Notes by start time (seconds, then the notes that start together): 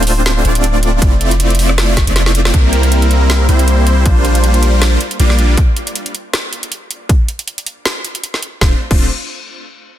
Already playing: D1 A3 C4 D4 F4 C5
0.03 closed hi-hat
0.07 open hi-hat
0.26 snare, closed hi-hat
0.45 D1 A3 C4 D4 F4 D5, closed hi-hat
0.55 closed hi-hat
0.64 closed hi-hat
0.83 closed hi-hat
1.02 F1 A3 C4 E4 F4 D5, kick, closed hi-hat
1.21 closed hi-hat
1.31 closed hi-hat
1.40 closed hi-hat
1.50 closed hi-hat
1.55 closed hi-hat
1.59 open hi-hat
1.69 cross-stick
1.78 snare, closed hi-hat
1.97 kick, snare, closed hi-hat
2.07 F1 A3 C4 E4 F4 D5, closed hi-hat
2.16 snare, closed hi-hat
2.26 snare
2.35 closed hi-hat
2.45 snare
2.54 C2 G3 A#3 C4 E4 A#4, kick, closed hi-hat
2.73 closed hi-hat
2.83 closed hi-hat
2.92 closed hi-hat
3.02 closed hi-hat
3.11 closed hi-hat
3.30 snare, closed hi-hat
3.49 C2 G3 A#3 C4 E4 C5, closed hi-hat
3.59 closed hi-hat
3.68 closed hi-hat
3.87 closed hi-hat
4.06 A#1 G3 A#3 D4 F4 C5, kick, closed hi-hat
4.25 closed hi-hat
4.35 closed hi-hat
4.44 closed hi-hat
4.54 closed hi-hat
4.63 closed hi-hat
4.82 snare, closed hi-hat
5.01 closed hi-hat
5.11 closed hi-hat
5.20 A#1 G3 A#3 D4 F4 D5, closed hi-hat
5.30 snare
5.39 closed hi-hat
5.57 kick, closed hi-hat
5.76 closed hi-hat
5.87 closed hi-hat
5.95 closed hi-hat
6.06 closed hi-hat
6.15 closed hi-hat
6.33 snare, closed hi-hat
6.53 closed hi-hat
6.63 closed hi-hat
6.72 closed hi-hat
6.91 closed hi-hat
7.09 kick, closed hi-hat
7.28 closed hi-hat
7.39 closed hi-hat
7.48 closed hi-hat
7.58 closed hi-hat
7.66 closed hi-hat
7.85 snare, closed hi-hat
8.05 closed hi-hat
8.15 closed hi-hat
8.24 closed hi-hat
8.34 snare
8.43 closed hi-hat
8.61 D1 A3 C4 D4 F4 C5, kick, snare
8.91 D1 A3 C4 D4 F4 C5, kick, crash